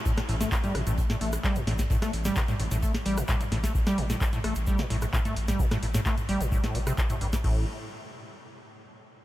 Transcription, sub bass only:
X:1
M:4/4
L:1/16
Q:1/4=130
K:Cmix
V:1 name="Sub bass" clef=bass
z2 A,,, z3 A,,, A,,, z2 A,,, z3 A,,, z | z2 A,,, z3 A,,, A,,, z2 A,,, z3 A,,, z | z2 A,,, z3 A,,, A,,, z2 A,,, z3 A,,, z | z2 A,,, z3 A,,, A,,, z2 A,,, z3 A,,, z |
A,,,2 z12 z2 |]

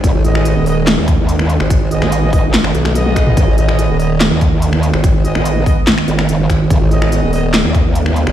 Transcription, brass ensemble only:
X:1
M:4/4
L:1/16
Q:1/4=144
K:G#phr
V:1 name="Brass ensemble"
z2 [B,Gd]4 [B,Gd] z8 z | z2 [B,Gd]4 [B,Gd] z4 z [B,Gd]4- | [B,Gd]2 [B,Gd]4 [B,Gd] z8 z | z2 [B,Gd]4 [B,Gd] z8 z |
z2 [B,Gd]4 [B,Gd] z8 z |]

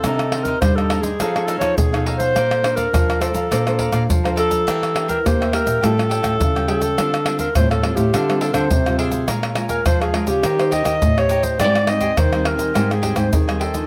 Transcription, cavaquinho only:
X:1
M:4/4
L:1/16
Q:1/4=104
K:Bblyd
V:1 name="Cavaquinho"
[_EBc_e]2 [EBce] [EBce] z [Bce] [EBce] [Bce] [EA^cf]2 [EAcf] [EAcf] z [Acf] [EAcf] [Acf] | [Adfb]2 [Adfb] [Adfb] z [dfb] [Adfb] [dfb] [Adfb]2 [Adfb] [Adfb] z [dfb] [Adfb] [dfb] | [DBeg]2 [DBeg] [DBeg] z [Beg] [DBeg] [Beg] [GA^cg]2 [GAcg] [GAcg] z [Acg] [GAcg] [Acg] | [DAcf]2 [DAcf] [DAcf] z [Acf] [DAcf] [Acf] [DAcf]2 [DAcf] [DAcf] z [Acf] [DAcf] [Acf] |
[B_df_a]2 [Bdfa] [Bdfa] z [dfa] [Bdfa] [dfa] [_EGd_e]2 [EGde] [EGde] z [Gde] [EGde] [Gde] | [Gc_e_a]2 [Gcea] [Gcea] z [cea] [Gcea] [cea] [Gcea]2 [Gcea] [Gcea] z [cea] [Gcea] [cea] |]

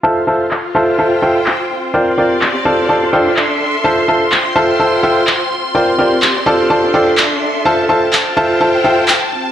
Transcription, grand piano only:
X:1
M:4/4
L:1/8
Q:"Swing 16ths" 1/4=126
K:F
V:1 name="Grand piano"
[FAcea] [FAcea] z [FAcea] [FAcea] [FAceg] z2 | [FBcdg] [FBcdg] z [FAcda] [FAcda] [FAcdg] z2 | [FAcea] [FAcea] z [FAcea] [FAcea] [FAceg] z2 | [FBcdg] [FBcdg] z [FAcda] [FAcda] [FAcdg] z2 |
[FAcea] [FAcea] z [FAcea] [FAcea] [FAceg] z2 |]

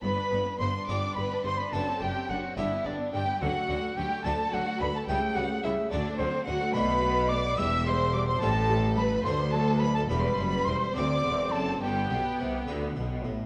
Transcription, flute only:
X:1
M:6/8
L:1/16
Q:3/8=71
K:G
V:1 name="Flute"
b4 c'2 d'2 b2 c' b | a2 g2 f2 e2 d2 g2 | f4 g2 a2 f2 b a | g2 f2 e2 d2 c2 f2 |
b4 d'2 e'2 c'2 d' c' | a4 b2 c'2 a2 b a | b4 c'2 d'4 a2 | g6 z6 |]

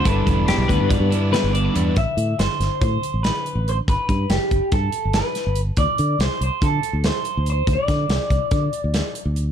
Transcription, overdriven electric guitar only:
X:1
M:9/8
L:1/8
Q:3/8=94
K:G
V:1 name="Overdriven electric guitar"
[G,,D,G,B,D] [G,B,D] [G,,D,G,B,D] [G,B,D]2 [G,B,D] [D,G,B,D]2 [G,,D,G,B,D] | z8 z | z8 z | z8 z |
z8 z |]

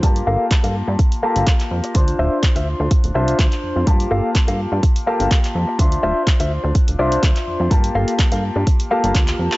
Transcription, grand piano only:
X:1
M:4/4
L:1/8
Q:"Swing 16ths" 1/4=125
K:Gdor
V:1 name="Grand piano"
[B,FGa]4- [B,FGa] [B,FGa]3 | [DFc]4- [DFc] [DFc]3 | [B,FGa]4- [B,FGa] [B,FGa]3 | [DFce]4- [DFce] [DFce]3 |
[B,FGa]4- [B,FGa] [B,FGa]3 |]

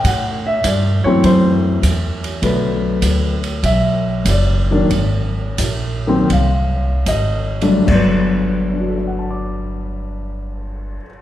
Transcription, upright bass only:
X:1
M:4/4
L:1/8
Q:"Swing" 1/4=91
K:G
V:1 name="Upright bass" clef=bass
A,,2 G,, z F,,2 E,,2 | B,,,2 D,,2 B,,,2 F,,,2 | _A,,,2 _B,,,2 C,,2 A,,,2 | G,,,8 |]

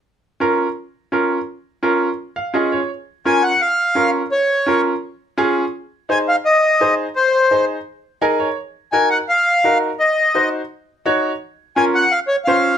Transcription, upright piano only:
X:1
M:4/4
L:1/8
Q:1/4=169
K:Bbm
V:1 name="Upright piano"
z2 [DFB] z3 [DFB] z | z2 [DFB] z2 f [DFAe] d | z2 [DFB] z3 [DFB] z | z2 [DFB] z3 [DFA] z |
z2 [EAc] z3 [EAc] z | z2 [EAc] z3 [EABa] d | z2 [EGB] z3 [EGB] z | z2 [EGc] z3 [EGd] z |
z2 [DFB] z3 [DFc] z |]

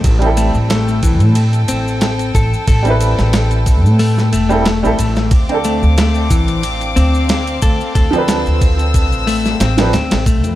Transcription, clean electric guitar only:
X:1
M:4/4
L:1/8
Q:"Swing 16ths" 1/4=91
K:Am
V:1 name="Clean electric guitar"
z A, A, E, z C2 A | A4 A, A, A, A, | z A, A, E, z C2 A | A4 A, C C A, |]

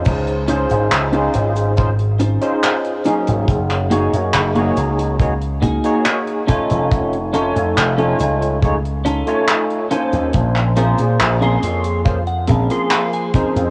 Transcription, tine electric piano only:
X:1
M:4/4
L:1/16
Q:1/4=70
K:Db
V:1 name="Tine electric piano"
[DEFAc]2 [DEFAc]3 [DEFAc]3 [DEFAc] z2 [DEFAc]3 [G,B,DEA]2- | [G,B,DEA]2 [B,EGAd]3 [B,EGAd]3 [B,EGAd] z2 [B,EGAd]3 [=A,EF^c^g]2- | [=A,EF^c^g]2 [A,EFcg]3 [A,EFcg]3 [A,EF^Gc] z2 [A,EFcg]3 [B,^CF=cg]2- | [B,^CF=c^g]2 [B,FAc]3 [B,FAc']3 [B,DFAc] z2 [F,B,Ac']3 [F,EAc]2 |]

